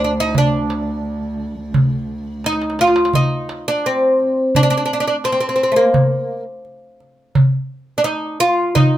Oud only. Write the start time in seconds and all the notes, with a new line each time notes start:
0.04 D4
0.20 D#4
0.38 D4
2.46 D#4
2.81 F4
3.15 D#4
3.68 D4
3.86 C4
4.56 D4
4.63 D4
4.70 D4
4.77 D4
4.86 D4
4.93 D4
5.00 D4
5.07 D4
5.25 C4
5.32 C4
5.40 C4
5.49 C4
5.56 C4
5.63 C4
5.72 A3
5.76 A#3
7.98 D4
8.04 D#4
8.40 F4
8.75 D#4